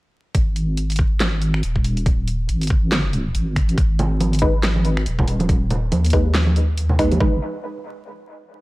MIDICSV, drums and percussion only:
0, 0, Header, 1, 2, 480
1, 0, Start_track
1, 0, Key_signature, 5, "minor"
1, 0, Tempo, 428571
1, 388, Time_signature, 4, 2, 24, 8
1, 9644, End_track
2, 0, Start_track
2, 0, Title_t, "Drums"
2, 387, Note_on_c, 9, 36, 123
2, 387, Note_on_c, 9, 42, 81
2, 499, Note_off_c, 9, 36, 0
2, 499, Note_off_c, 9, 42, 0
2, 627, Note_on_c, 9, 42, 57
2, 739, Note_off_c, 9, 42, 0
2, 867, Note_on_c, 9, 42, 85
2, 979, Note_off_c, 9, 42, 0
2, 1008, Note_on_c, 9, 42, 50
2, 1028, Note_off_c, 9, 42, 0
2, 1028, Note_on_c, 9, 42, 66
2, 1074, Note_off_c, 9, 42, 0
2, 1074, Note_on_c, 9, 42, 87
2, 1107, Note_on_c, 9, 36, 102
2, 1186, Note_off_c, 9, 42, 0
2, 1219, Note_off_c, 9, 36, 0
2, 1347, Note_on_c, 9, 38, 117
2, 1347, Note_on_c, 9, 39, 93
2, 1347, Note_on_c, 9, 42, 81
2, 1459, Note_off_c, 9, 38, 0
2, 1459, Note_off_c, 9, 39, 0
2, 1459, Note_off_c, 9, 42, 0
2, 1586, Note_on_c, 9, 42, 55
2, 1698, Note_off_c, 9, 42, 0
2, 1726, Note_on_c, 9, 26, 76
2, 1826, Note_on_c, 9, 42, 86
2, 1838, Note_off_c, 9, 26, 0
2, 1938, Note_off_c, 9, 42, 0
2, 1967, Note_on_c, 9, 36, 59
2, 2065, Note_on_c, 9, 46, 89
2, 2079, Note_off_c, 9, 36, 0
2, 2177, Note_off_c, 9, 46, 0
2, 2206, Note_on_c, 9, 42, 40
2, 2307, Note_off_c, 9, 42, 0
2, 2307, Note_on_c, 9, 36, 127
2, 2307, Note_on_c, 9, 42, 78
2, 2419, Note_off_c, 9, 36, 0
2, 2419, Note_off_c, 9, 42, 0
2, 2548, Note_on_c, 9, 42, 54
2, 2660, Note_off_c, 9, 42, 0
2, 2787, Note_on_c, 9, 42, 82
2, 2899, Note_off_c, 9, 42, 0
2, 2928, Note_on_c, 9, 42, 52
2, 2947, Note_off_c, 9, 42, 0
2, 2947, Note_on_c, 9, 42, 66
2, 2993, Note_off_c, 9, 42, 0
2, 2993, Note_on_c, 9, 42, 84
2, 3027, Note_on_c, 9, 36, 107
2, 3105, Note_off_c, 9, 42, 0
2, 3139, Note_off_c, 9, 36, 0
2, 3268, Note_on_c, 9, 38, 124
2, 3268, Note_on_c, 9, 39, 97
2, 3268, Note_on_c, 9, 42, 81
2, 3380, Note_off_c, 9, 38, 0
2, 3380, Note_off_c, 9, 39, 0
2, 3380, Note_off_c, 9, 42, 0
2, 3508, Note_on_c, 9, 42, 52
2, 3620, Note_off_c, 9, 42, 0
2, 3748, Note_on_c, 9, 42, 85
2, 3860, Note_off_c, 9, 42, 0
2, 3988, Note_on_c, 9, 36, 66
2, 3990, Note_on_c, 9, 26, 61
2, 3990, Note_on_c, 9, 46, 88
2, 4100, Note_off_c, 9, 36, 0
2, 4102, Note_off_c, 9, 26, 0
2, 4102, Note_off_c, 9, 46, 0
2, 4132, Note_on_c, 9, 42, 39
2, 4229, Note_on_c, 9, 36, 127
2, 4230, Note_off_c, 9, 42, 0
2, 4230, Note_on_c, 9, 42, 77
2, 4341, Note_off_c, 9, 36, 0
2, 4342, Note_off_c, 9, 42, 0
2, 4470, Note_on_c, 9, 42, 54
2, 4470, Note_on_c, 9, 64, 83
2, 4582, Note_off_c, 9, 42, 0
2, 4582, Note_off_c, 9, 64, 0
2, 4707, Note_on_c, 9, 63, 94
2, 4710, Note_on_c, 9, 42, 77
2, 4819, Note_off_c, 9, 63, 0
2, 4822, Note_off_c, 9, 42, 0
2, 4852, Note_on_c, 9, 42, 49
2, 4868, Note_off_c, 9, 42, 0
2, 4868, Note_on_c, 9, 42, 65
2, 4915, Note_off_c, 9, 42, 0
2, 4915, Note_on_c, 9, 42, 79
2, 4950, Note_on_c, 9, 36, 112
2, 5027, Note_off_c, 9, 42, 0
2, 5062, Note_off_c, 9, 36, 0
2, 5189, Note_on_c, 9, 38, 123
2, 5189, Note_on_c, 9, 39, 91
2, 5189, Note_on_c, 9, 42, 78
2, 5301, Note_off_c, 9, 38, 0
2, 5301, Note_off_c, 9, 39, 0
2, 5301, Note_off_c, 9, 42, 0
2, 5330, Note_on_c, 9, 63, 72
2, 5428, Note_on_c, 9, 42, 50
2, 5442, Note_off_c, 9, 63, 0
2, 5540, Note_off_c, 9, 42, 0
2, 5568, Note_on_c, 9, 26, 82
2, 5668, Note_on_c, 9, 42, 83
2, 5680, Note_off_c, 9, 26, 0
2, 5780, Note_off_c, 9, 42, 0
2, 5809, Note_on_c, 9, 36, 68
2, 5817, Note_on_c, 9, 64, 81
2, 5908, Note_on_c, 9, 46, 89
2, 5921, Note_off_c, 9, 36, 0
2, 5929, Note_off_c, 9, 64, 0
2, 6020, Note_off_c, 9, 46, 0
2, 6045, Note_on_c, 9, 63, 98
2, 6049, Note_on_c, 9, 42, 37
2, 6149, Note_off_c, 9, 42, 0
2, 6149, Note_on_c, 9, 36, 127
2, 6149, Note_on_c, 9, 42, 74
2, 6157, Note_off_c, 9, 63, 0
2, 6261, Note_off_c, 9, 36, 0
2, 6261, Note_off_c, 9, 42, 0
2, 6389, Note_on_c, 9, 42, 51
2, 6390, Note_on_c, 9, 64, 74
2, 6501, Note_off_c, 9, 42, 0
2, 6502, Note_off_c, 9, 64, 0
2, 6627, Note_on_c, 9, 63, 100
2, 6629, Note_on_c, 9, 42, 75
2, 6739, Note_off_c, 9, 63, 0
2, 6741, Note_off_c, 9, 42, 0
2, 6771, Note_on_c, 9, 42, 49
2, 6789, Note_off_c, 9, 42, 0
2, 6789, Note_on_c, 9, 42, 62
2, 6834, Note_off_c, 9, 42, 0
2, 6834, Note_on_c, 9, 42, 77
2, 6867, Note_on_c, 9, 46, 62
2, 6868, Note_on_c, 9, 36, 111
2, 6946, Note_off_c, 9, 42, 0
2, 6979, Note_off_c, 9, 46, 0
2, 6980, Note_off_c, 9, 36, 0
2, 7106, Note_on_c, 9, 38, 127
2, 7106, Note_on_c, 9, 39, 86
2, 7106, Note_on_c, 9, 42, 77
2, 7218, Note_off_c, 9, 38, 0
2, 7218, Note_off_c, 9, 39, 0
2, 7218, Note_off_c, 9, 42, 0
2, 7241, Note_on_c, 9, 63, 75
2, 7348, Note_on_c, 9, 42, 50
2, 7353, Note_off_c, 9, 63, 0
2, 7460, Note_off_c, 9, 42, 0
2, 7588, Note_on_c, 9, 42, 81
2, 7700, Note_off_c, 9, 42, 0
2, 7721, Note_on_c, 9, 64, 84
2, 7828, Note_on_c, 9, 26, 68
2, 7828, Note_on_c, 9, 36, 64
2, 7828, Note_on_c, 9, 46, 90
2, 7833, Note_off_c, 9, 64, 0
2, 7940, Note_off_c, 9, 26, 0
2, 7940, Note_off_c, 9, 36, 0
2, 7940, Note_off_c, 9, 46, 0
2, 7969, Note_on_c, 9, 42, 35
2, 7975, Note_on_c, 9, 63, 90
2, 8069, Note_on_c, 9, 36, 113
2, 8081, Note_off_c, 9, 42, 0
2, 8087, Note_off_c, 9, 63, 0
2, 8181, Note_off_c, 9, 36, 0
2, 9644, End_track
0, 0, End_of_file